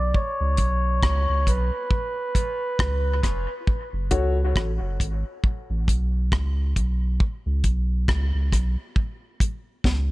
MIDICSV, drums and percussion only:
0, 0, Header, 1, 2, 480
1, 0, Start_track
1, 0, Key_signature, 3, "minor"
1, 0, Tempo, 881964
1, 78, Time_signature, 4, 2, 24, 8
1, 5505, End_track
2, 0, Start_track
2, 0, Title_t, "Drums"
2, 79, Note_on_c, 9, 36, 93
2, 133, Note_off_c, 9, 36, 0
2, 312, Note_on_c, 9, 42, 66
2, 318, Note_on_c, 9, 36, 79
2, 367, Note_off_c, 9, 42, 0
2, 372, Note_off_c, 9, 36, 0
2, 558, Note_on_c, 9, 36, 98
2, 562, Note_on_c, 9, 37, 97
2, 612, Note_off_c, 9, 36, 0
2, 616, Note_off_c, 9, 37, 0
2, 799, Note_on_c, 9, 36, 70
2, 802, Note_on_c, 9, 42, 66
2, 854, Note_off_c, 9, 36, 0
2, 857, Note_off_c, 9, 42, 0
2, 1037, Note_on_c, 9, 36, 102
2, 1092, Note_off_c, 9, 36, 0
2, 1279, Note_on_c, 9, 36, 88
2, 1282, Note_on_c, 9, 42, 64
2, 1333, Note_off_c, 9, 36, 0
2, 1337, Note_off_c, 9, 42, 0
2, 1519, Note_on_c, 9, 36, 107
2, 1524, Note_on_c, 9, 37, 111
2, 1573, Note_off_c, 9, 36, 0
2, 1578, Note_off_c, 9, 37, 0
2, 1760, Note_on_c, 9, 36, 76
2, 1761, Note_on_c, 9, 42, 63
2, 1764, Note_on_c, 9, 37, 64
2, 1814, Note_off_c, 9, 36, 0
2, 1815, Note_off_c, 9, 42, 0
2, 1819, Note_off_c, 9, 37, 0
2, 1999, Note_on_c, 9, 36, 98
2, 2054, Note_off_c, 9, 36, 0
2, 2236, Note_on_c, 9, 42, 67
2, 2239, Note_on_c, 9, 36, 86
2, 2291, Note_off_c, 9, 42, 0
2, 2293, Note_off_c, 9, 36, 0
2, 2480, Note_on_c, 9, 36, 102
2, 2486, Note_on_c, 9, 37, 98
2, 2534, Note_off_c, 9, 36, 0
2, 2541, Note_off_c, 9, 37, 0
2, 2721, Note_on_c, 9, 36, 75
2, 2726, Note_on_c, 9, 42, 67
2, 2776, Note_off_c, 9, 36, 0
2, 2780, Note_off_c, 9, 42, 0
2, 2959, Note_on_c, 9, 36, 97
2, 3013, Note_off_c, 9, 36, 0
2, 3200, Note_on_c, 9, 36, 86
2, 3206, Note_on_c, 9, 42, 67
2, 3254, Note_off_c, 9, 36, 0
2, 3260, Note_off_c, 9, 42, 0
2, 3439, Note_on_c, 9, 36, 113
2, 3444, Note_on_c, 9, 37, 107
2, 3494, Note_off_c, 9, 36, 0
2, 3499, Note_off_c, 9, 37, 0
2, 3680, Note_on_c, 9, 36, 75
2, 3682, Note_on_c, 9, 42, 62
2, 3735, Note_off_c, 9, 36, 0
2, 3736, Note_off_c, 9, 42, 0
2, 3920, Note_on_c, 9, 36, 98
2, 3974, Note_off_c, 9, 36, 0
2, 4157, Note_on_c, 9, 42, 63
2, 4159, Note_on_c, 9, 36, 77
2, 4212, Note_off_c, 9, 42, 0
2, 4213, Note_off_c, 9, 36, 0
2, 4399, Note_on_c, 9, 36, 98
2, 4402, Note_on_c, 9, 37, 94
2, 4453, Note_off_c, 9, 36, 0
2, 4457, Note_off_c, 9, 37, 0
2, 4640, Note_on_c, 9, 36, 80
2, 4643, Note_on_c, 9, 37, 60
2, 4643, Note_on_c, 9, 42, 67
2, 4694, Note_off_c, 9, 36, 0
2, 4697, Note_off_c, 9, 37, 0
2, 4698, Note_off_c, 9, 42, 0
2, 4876, Note_on_c, 9, 36, 94
2, 4931, Note_off_c, 9, 36, 0
2, 5118, Note_on_c, 9, 36, 91
2, 5122, Note_on_c, 9, 42, 65
2, 5172, Note_off_c, 9, 36, 0
2, 5176, Note_off_c, 9, 42, 0
2, 5357, Note_on_c, 9, 36, 110
2, 5361, Note_on_c, 9, 38, 53
2, 5411, Note_off_c, 9, 36, 0
2, 5416, Note_off_c, 9, 38, 0
2, 5505, End_track
0, 0, End_of_file